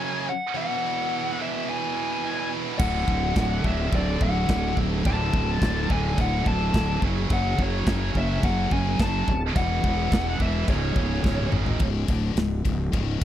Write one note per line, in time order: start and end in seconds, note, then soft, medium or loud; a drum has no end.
0.00 0.25 F#2 medium
0.00 0.26 C#3 loud
0.00 0.27 F#3 medium
0.00 0.29 G#5 loud
0.05 0.11 F#2 medium
0.05 0.12 C#3 medium
0.12 0.20 F#2 medium
0.12 0.20 C#3 medium
0.20 0.28 F#2 medium
0.20 0.28 C#3 medium
0.29 0.57 F#5 medium
0.54 0.62 E2 medium
0.54 0.62 B2 loud
0.54 1.38 E3 loud
0.54 1.44 F#5 medium
0.62 0.70 E2 medium
0.62 0.69 B2 medium
0.70 0.77 E2 medium
0.70 0.77 B2 medium
0.78 0.86 E2 medium
0.78 0.85 B2 medium
0.86 0.92 E2 medium
0.86 0.94 B2 medium
0.93 1.01 E2 medium
0.93 1.01 B2 medium
1.01 1.09 E2 medium
1.01 1.09 B2 medium
1.09 1.16 E2 medium
1.09 1.17 B2 medium
1.16 1.24 E2 medium
1.16 1.25 B2 medium
1.25 1.32 E2 medium
1.25 1.32 B2 medium
1.32 1.40 E2 medium
1.32 1.40 B2 medium
1.39 1.48 E2 medium
1.39 1.48 B2 medium
1.39 2.78 E3 medium
1.39 1.70 E5 medium
1.48 1.55 E2 medium
1.48 1.56 B2 medium
1.56 1.63 E2 medium
1.56 1.64 B2 medium
1.63 1.71 E2 medium
1.63 1.71 B2 medium
1.69 1.79 E2 medium
1.69 1.79 B2 medium
1.69 2.49 G#5 medium
1.79 1.85 E2 medium
1.79 1.86 B2 medium
1.86 1.94 E2 medium
1.86 1.94 B2 medium
1.95 2.02 E2 medium
1.95 2.02 B2 medium
2.02 2.09 E2 medium
2.02 2.10 B2 medium
2.10 2.17 E2 medium
2.10 2.18 B2 medium
2.17 2.25 E2 medium
2.17 2.25 B2 medium
2.25 2.33 E2 medium
2.25 2.33 B2 medium
2.34 2.40 E2 medium
2.34 2.41 B2 medium
2.40 2.48 E2 medium
2.40 2.48 B2 medium
2.49 2.56 E2 medium
2.49 2.56 B2 medium
2.56 2.63 E2 medium
2.56 2.64 B2 medium
2.63 2.71 E2 medium
2.63 2.72 B2 medium
2.72 2.79 E2 medium
2.72 2.80 B2 medium
2.79 3.06 D1 medium
2.79 2.87 D2 medium
2.79 2.87 A2 medium
2.79 3.64 D3 medium
2.79 3.67 F#5 loud
2.79 kick loud
2.79 crash loud
2.79 china medium
2.87 2.95 D2 medium
2.87 2.95 A2 medium
2.95 3.02 D2 medium
2.95 3.03 A2 medium
3.02 3.10 D2 medium
3.02 3.10 A2 medium
3.07 3.34 D1 medium
3.07 3.18 D2 medium
3.07 3.18 A2 medium
3.07 kick medium
3.18 3.25 D2 medium
3.18 3.27 A2 medium
3.26 3.33 D2 medium
3.26 3.34 A2 medium
3.34 3.62 D1 medium
3.34 3.41 D2 medium
3.34 3.41 A2 medium
3.34 kick loud
3.34 snare loud
3.34 china medium
3.41 3.49 D2 medium
3.41 3.49 A2 medium
3.50 3.57 D2 medium
3.50 3.57 A2 medium
3.58 3.65 D2 medium
3.58 3.65 A2 medium
3.64 3.90 D1 medium
3.64 3.72 D2 medium
3.64 3.73 A2 medium
3.64 5.03 D3 medium
3.64 3.95 E5 medium
3.64 kick medium
3.72 3.80 D2 medium
3.72 3.81 A2 medium
3.81 3.88 D2 medium
3.81 3.88 A2 medium
3.88 4.18 D1 medium
3.88 3.95 D2 medium
3.88 3.96 A2 medium
3.92 4.03 D2 medium
3.92 4.23 D5 medium
3.92 kick loud
3.92 china medium
3.97 4.04 A2 medium
4.04 4.11 D2 medium
4.04 4.12 A2 medium
4.12 4.18 D2 medium
4.12 4.19 A2 medium
4.19 4.47 D1 medium
4.19 4.27 D2 medium
4.19 4.27 A2 medium
4.19 4.74 F#5 loud
4.19 kick medium
4.27 4.33 D2 medium
4.27 4.34 A2 medium
4.34 4.42 D2 medium
4.34 4.42 A2 medium
4.42 4.48 D2 medium
4.42 4.51 A2 medium
4.49 4.75 D1 loud
4.49 4.56 D2 medium
4.49 4.57 A2 medium
4.49 kick loud
4.49 snare loud
4.49 china medium
4.57 4.64 D2 medium
4.57 4.65 A2 medium
4.65 4.73 D2 medium
4.65 4.74 A2 medium
4.73 5.03 D1 medium
4.73 4.80 D2 medium
4.73 4.81 A2 medium
4.73 kick medium
4.80 4.88 D2 medium
4.80 4.89 A2 medium
4.89 4.95 D2 medium
4.89 4.97 A2 medium
4.95 5.03 D2 medium
4.95 5.05 A2 medium
5.05 5.31 D1 loud
5.05 5.12 D2 medium
5.05 5.13 A2 medium
5.05 5.89 D3 loud
5.05 5.91 A5 loud
5.05 kick loud
5.05 china medium
5.13 5.20 D2 medium
5.13 5.20 A2 medium
5.20 5.28 D2 medium
5.20 5.28 A2 medium
5.28 5.35 D2 medium
5.28 5.36 A2 medium
5.33 5.59 D1 medium
5.33 5.41 D2 medium
5.33 5.43 A2 medium
5.33 kick medium
5.42 5.49 D2 medium
5.42 5.51 A2 medium
5.51 5.58 D2 medium
5.51 5.59 A2 medium
5.58 5.88 D1 medium
5.58 5.65 D2 medium
5.58 5.67 A2 medium
5.58 kick loud
5.58 china medium
5.63 5.73 D2 medium
5.63 snare loud
5.67 5.73 A2 medium
5.73 5.81 D2 medium
5.73 5.81 A2 medium
5.81 5.89 D2 medium
5.81 5.89 A2 medium
5.89 6.16 D1 loud
5.89 5.95 D2 medium
5.89 5.97 A2 medium
5.89 7.01 D3 medium
5.89 6.20 G#5 loud
5.89 kick medium
5.96 6.03 D2 medium
5.96 6.04 A2 medium
6.04 6.10 D2 medium
6.04 6.12 A2 medium
6.10 6.18 D2 medium
6.10 6.19 A2 medium
6.17 6.44 D1 medium
6.17 6.26 D2 medium
6.17 6.27 A2 medium
6.17 6.47 F#5 loud
6.17 kick loud
6.17 china medium
6.27 6.32 D2 medium
6.27 6.35 A2 medium
6.33 6.40 D2 medium
6.33 6.42 A2 medium
6.42 6.72 D1 medium
6.42 6.49 D2 medium
6.42 6.49 A2 medium
6.42 kick medium
6.48 6.57 D2 medium
6.48 6.56 A2 medium
6.48 6.99 A5 medium
6.57 6.63 D2 medium
6.57 6.64 A2 medium
6.63 6.71 D2 medium
6.63 6.72 A2 medium
6.71 7.00 D1 loud
6.71 6.79 D2 medium
6.71 6.80 A2 medium
6.71 kick loud
6.71 china medium
6.76 6.86 D2 medium
6.76 snare loud
6.81 6.86 A2 medium
6.87 6.94 D2 medium
6.87 6.94 A2 medium
6.95 7.02 D2 medium
6.95 7.03 A2 medium
7.02 7.28 F#1 loud
7.02 7.10 F#2 medium
7.02 7.10 C#3 medium
7.02 7.87 F#3 loud
7.02 kick medium
7.11 7.18 F#2 medium
7.11 7.19 C#3 medium
7.19 7.25 F#2 medium
7.19 7.27 C#3 medium
7.25 7.33 F#2 medium
7.25 7.34 C#3 medium
7.30 7.56 F#1 loud
7.30 7.61 F#5 loud
7.30 kick loud
7.30 china medium
7.34 7.41 F#2 medium
7.34 7.42 C#3 medium
7.41 7.49 F#2 medium
7.41 7.50 C#3 medium
7.50 7.57 F#2 medium
7.50 7.58 C#3 medium
7.58 7.84 F#1 medium
7.58 7.63 F#2 medium
7.58 7.66 C#3 medium
7.58 kick medium
7.62 7.72 F#2 medium
7.62 8.18 C#5 medium
7.67 7.72 C#3 medium
7.72 7.80 F#2 medium
7.72 7.80 C#3 medium
7.80 7.88 F#2 medium
7.80 7.88 C#3 medium
7.87 8.13 F#1 medium
7.87 7.95 F#2 medium
7.87 7.96 C#3 medium
7.87 9.27 F#3 loud
7.87 kick loud
7.87 snare loud
7.87 china medium
7.96 8.03 F#2 medium
7.96 8.03 C#3 medium
8.04 8.10 F#2 medium
8.04 8.12 C#3 medium
8.11 8.41 F#1 medium
8.11 8.18 F#2 medium
8.11 8.20 C#3 medium
8.15 8.26 F#2 medium
8.15 8.46 E5 loud
8.15 kick medium
8.22 8.27 C#3 medium
8.27 8.34 F#2 medium
8.27 8.34 C#3 medium
8.34 8.42 F#2 medium
8.34 8.42 C#3 medium
8.43 8.69 F#1 medium
8.43 8.50 F#2 medium
8.43 8.50 C#3 medium
8.43 8.72 F#5 loud
8.43 kick loud
8.43 china medium
8.50 8.58 F#2 medium
8.50 8.59 C#3 medium
8.58 8.65 F#2 medium
8.58 8.65 C#3 medium
8.66 8.73 F#2 medium
8.66 8.74 C#3 medium
8.71 8.98 F#1 loud
8.71 8.81 F#2 medium
8.71 8.82 C#3 medium
8.71 9.01 G#5 loud
8.71 kick medium
8.82 8.89 F#2 medium
8.82 8.90 C#3 medium
8.89 8.97 F#2 medium
8.89 8.97 C#3 medium
8.97 9.25 F#1 medium
8.97 9.04 F#2 medium
8.97 9.05 C#3 medium
8.97 kick loud
8.97 snare loud
8.97 china medium
9.01 9.12 F#2 medium
9.01 9.40 A5 loud
9.05 9.13 C#3 medium
9.12 9.20 F#2 medium
9.12 9.20 C#3 medium
9.21 9.29 F#2 medium
9.21 9.29 C#3 medium
9.28 9.54 D1 medium
9.28 kick medium
9.55 9.82 E1 loud
9.55 9.62 E2 medium
9.55 9.64 B2 medium
9.55 10.39 E3 loud
9.55 10.44 F#5 loud
9.55 kick loud
9.55 china medium
9.62 9.70 E2 medium
9.62 9.71 B2 medium
9.71 9.77 E2 medium
9.71 9.78 B2 medium
9.78 9.85 E2 medium
9.78 9.86 B2 medium
9.83 10.10 E1 medium
9.83 9.93 E2 medium
9.83 9.93 B2 medium
9.83 kick medium
9.94 10.00 E2 medium
9.94 10.01 B2 medium
10.00 10.08 E2 medium
10.00 10.09 B2 medium
10.08 10.38 E1 loud
10.08 10.14 E2 medium
10.08 10.16 B2 medium
10.12 10.22 E2 medium
10.12 kick loud
10.12 snare loud
10.12 china medium
10.16 10.23 B2 medium
10.23 10.31 E2 medium
10.23 10.30 B2 medium
10.30 10.38 E2 medium
10.30 10.38 B2 medium
10.39 10.66 E1 medium
10.39 10.45 E2 medium
10.39 10.46 B2 medium
10.39 10.67 E3 medium
10.39 10.69 E5 medium
10.39 kick medium
10.46 10.52 E2 medium
10.46 10.54 B2 medium
10.53 10.60 E2 medium
10.53 10.61 B2 medium
10.61 10.67 E2 medium
10.61 10.67 B2 medium
10.67 10.94 C#1 medium
10.67 10.75 C#2 medium
10.67 10.75 G#2 medium
10.67 11.50 C#3 loud
10.67 11.50 C#5 medium
10.67 kick loud
10.67 china medium
10.75 10.83 C#2 medium
10.75 10.84 G#2 medium
10.83 10.90 C#2 medium
10.83 10.91 G#2 medium
10.91 10.99 C#2 medium
10.91 10.99 G#2 medium
10.96 11.22 C#1 medium
10.96 11.07 G#2 medium
10.96 kick medium
11.00 11.07 C#2 medium
11.07 11.15 C#2 medium
11.07 11.15 G#2 medium
11.15 11.22 C#2 medium
11.15 11.23 G#2 medium
11.22 11.51 C#1 loud
11.22 11.30 C#2 medium
11.22 11.31 G#2 medium
11.22 kick loud
11.22 snare medium
11.31 11.38 C#2 medium
11.31 11.39 G#2 medium
11.38 11.46 C#2 medium
11.38 11.46 G#2 medium
11.38 mid tom medium
11.46 11.54 C#2 medium
11.46 11.54 G#2 medium
11.51 11.79 G#1 medium
11.51 11.61 C#2 medium
11.51 11.79 C#3 medium
11.51 mid tom medium
11.56 11.63 G#2 medium
11.62 11.70 C#2 medium
11.62 11.71 G#2 medium
11.66 11.78 C#2 medium
11.66 floor tom medium
11.72 11.80 G#2 medium
11.79 12.07 C#1 medium
11.79 12.08 C#2 medium
11.79 12.08 G#2 medium
11.79 12.08 C#3 loud
11.79 kick loud
11.79 ride loud
12.08 12.35 D1 medium
12.08 12.36 D2 medium
12.08 12.36 A2 loud
12.08 12.37 D3 loud
12.08 kick loud
12.08 ride medium
12.35 12.63 C#1 medium
12.35 12.60 C#2 medium
12.35 12.60 G#2 medium
12.35 snare loud
12.35 ride loud
12.65 12.92 C#1 medium
12.65 12.88 C#2 medium
12.65 12.88 G#2 medium
12.65 kick medium
12.65 ride medium
12.92 13.20 C#1 medium
12.92 13.20 C#2 medium
12.92 13.21 G#2 medium
12.92 13.21 C#3 loud
12.92 kick loud
12.92 ride loud
13.21 13.24 E2 loud